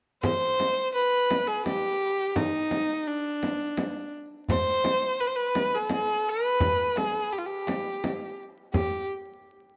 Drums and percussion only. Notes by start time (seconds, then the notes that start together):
0.23 frame drum
0.60 frame drum
1.31 frame drum
1.66 frame drum
2.36 frame drum
2.71 frame drum
3.43 frame drum
3.77 frame drum
4.48 tombak dum, frame drum
4.84 tombak tek, frame drum
5.02 tombak ka
5.20 tombak ka
5.55 frame drum
5.89 tombak tek, frame drum
6.60 tombak dum, frame drum
6.96 tombak tek, frame drum
7.14 tombak ka
7.32 tombak ka
7.67 tombak tek, frame drum
8.04 tombak tek, frame drum
8.74 tombak dum, frame drum